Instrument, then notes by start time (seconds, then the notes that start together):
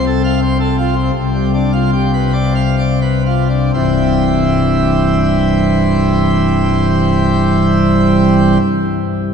pipe organ
Already playing: C2 C3
0.06 A4
0.24 F5
0.42 C5
0.60 A4
0.78 F4
0.95 C4
1.15 C2 C3
1.34 G3
1.54 D4
1.72 F4
1.93 G4
2.14 B4
2.33 D5
2.55 F5
2.79 D5
3.02 B4
3.26 F4
3.50 D4
3.74 C1 C2 G2 E3 G3 C4 E4